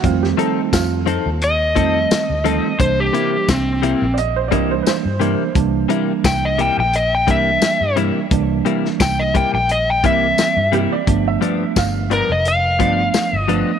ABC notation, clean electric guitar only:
X:1
M:4/4
L:1/8
Q:"Swing 16ths" 1/4=87
K:Cmix
V:1 name="Clean electric guitar"
z [F,C_EA] z [F,CEA] z [F,CEA] z [F,CEA] | z [C,G,B,E] z [C,G,B,E] z [C,G,B,E] z [C,G,B,E] | z [C,G,B,E] z [C,G,B,E] z [C,G,B,E] z [C,G,B,E] | z [C,G,B,E] z [C,G,B,E] z [C,G,B,E] z [C,G,B,E] |
z [G,,F,=B,D] z [G,,F,B,D] z [G,,F,B,D] z [G,,F,B,D] |]